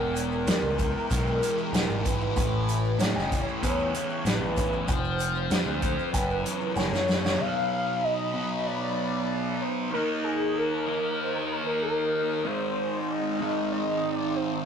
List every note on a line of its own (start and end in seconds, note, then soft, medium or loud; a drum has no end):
0.00 0.43 E1 loud
0.00 1.42 E2 medium
0.00 2.34 G#3 medium
0.00 0.47 B3 medium
0.00 4.85 E4 medium
0.00 4.85 G4 medium
0.00 2.06 A#4 loud
0.15 closed hi-hat medium
0.15 maracas medium
0.32 maracas soft
0.47 0.62 E2 medium
0.47 2.02 B3 medium
0.47 snare loud
0.47 closed hi-hat medium
0.47 maracas loud
0.63 0.92 C#2 medium
0.78 1.39 E3 medium
0.78 kick medium
0.78 closed hi-hat medium
0.78 maracas medium
1.10 1.40 B1 medium
1.10 1.72 G#3 medium
1.10 kick medium
1.10 closed hi-hat medium
1.10 maracas loud
1.27 maracas soft
1.41 2.36 E3 medium
1.41 closed hi-hat medium
1.41 maracas medium
1.58 maracas soft
1.73 1.88 E1 medium
1.73 2.36 G#3 medium
1.73 snare loud
1.73 closed hi-hat medium
1.73 maracas medium
1.88 2.32 G#1 medium
1.88 maracas soft
2.03 2.36 B3 medium
2.03 2.98 B4 medium
2.03 kick medium
2.03 closed hi-hat medium
2.03 maracas medium
2.20 maracas soft
2.35 2.95 A1 loud
2.35 3.93 A2 medium
2.35 4.86 A3 medium
2.35 4.86 C#4 medium
2.35 kick medium
2.35 closed hi-hat medium
2.35 maracas medium
2.68 closed hi-hat medium
2.68 maracas medium
2.84 maracas soft
2.98 3.14 A2 medium
2.98 4.55 C#4 medium
2.98 3.44 D#5 medium
2.98 snare loud
2.98 closed hi-hat medium
2.98 maracas medium
3.15 3.44 F#1 medium
3.15 snare soft
3.30 3.93 E3 medium
3.30 kick medium
3.30 closed hi-hat medium
3.30 maracas medium
3.44 3.58 C#5 medium
3.49 maracas soft
3.61 3.92 E2 loud
3.61 4.24 B3 medium
3.61 4.27 C#5 medium
3.61 kick medium
3.61 closed hi-hat medium
3.61 maracas medium
3.79 maracas soft
3.94 4.87 E3 medium
3.94 closed hi-hat medium
4.10 maracas soft
4.25 4.40 A1 medium
4.25 4.89 B3 medium
4.25 4.88 B4 loud
4.25 snare medium
4.25 closed hi-hat medium
4.25 maracas medium
4.41 4.84 A1 loud
4.56 4.88 C#4 medium
4.56 kick medium
4.56 closed hi-hat medium
4.56 maracas medium
4.73 maracas soft
4.88 5.47 F1 loud
4.88 5.80 F3 medium
4.88 6.13 G3 medium
4.88 6.14 C4 medium
4.88 6.13 F4 medium
4.88 6.06 C5 loud
4.88 6.14 C5 medium
4.88 kick medium
4.88 closed hi-hat medium
4.88 maracas medium
5.04 maracas soft
5.19 closed hi-hat medium
5.19 maracas medium
5.35 maracas soft
5.50 5.66 F2 medium
5.50 6.14 C4 medium
5.50 snare loud
5.50 closed hi-hat medium
5.50 maracas medium
5.66 5.96 D2 medium
5.66 maracas soft
5.82 6.14 F3 medium
5.82 kick medium
5.82 closed hi-hat medium
5.82 maracas medium
5.99 maracas soft
6.06 6.74 B4 loud
6.12 6.43 F#1 medium
6.12 7.40 F#2 medium
6.12 7.39 F#3 medium
6.12 7.40 C#4 medium
6.12 7.40 E4 medium
6.12 7.40 A#4 medium
6.12 kick medium
6.12 closed hi-hat medium
6.12 maracas medium
6.30 maracas soft
6.45 7.40 E3 medium
6.45 closed hi-hat medium
6.45 maracas medium
6.61 maracas soft
6.76 6.91 F#1 medium
6.76 7.40 A#3 medium
6.76 7.42 C#5 loud
6.76 snare medium
6.76 maracas medium
6.92 7.36 F#2 medium
6.92 snare medium
6.92 maracas soft
7.08 7.40 C#4 medium
7.08 snare medium
7.08 maracas medium
7.24 snare medium
7.24 maracas soft
7.38 8.32 B2 medium
7.38 8.33 F#3 medium
7.38 9.90 F#3 medium
7.38 8.32 B3 loud
7.38 9.90 D#4 medium
7.38 8.05 F5 loud
7.38 9.90 B5 medium
8.04 8.68 D#5 loud
8.33 9.91 B2 medium
8.33 9.91 F#3 medium
8.33 9.90 B3 medium
8.66 9.63 D5 loud
9.61 9.92 C5 medium
9.91 10.85 D#3 medium
9.91 12.44 D#3 medium
9.91 10.86 A#3 loud
9.91 12.43 A#3 medium
9.91 14.65 D#4 medium
9.91 10.86 D#4 loud
9.91 10.07 A#4 loud
9.91 12.43 A#4 medium
10.24 10.58 G#4 medium
10.57 11.23 A#4 medium
10.86 12.44 D#3 medium
10.86 12.44 A#3 medium
10.86 14.36 D#4 medium
11.21 11.53 C5 medium
11.52 11.59 A#4 loud
11.57 11.67 C5 medium
11.65 11.82 A#4 medium
11.82 12.48 A#4 loud
12.44 13.37 G#2 medium
12.44 13.39 D#3 medium
12.44 14.65 G#3 medium
12.44 13.39 G#3 loud
12.44 14.65 C4 medium
12.44 13.11 C5 loud
13.10 13.71 D#5 medium
13.40 14.65 G#2 medium
13.40 14.65 D#3 medium
13.40 14.65 G#3 medium
13.71 14.13 D#5 loud
14.13 14.36 D5 loud
14.35 14.65 C5 loud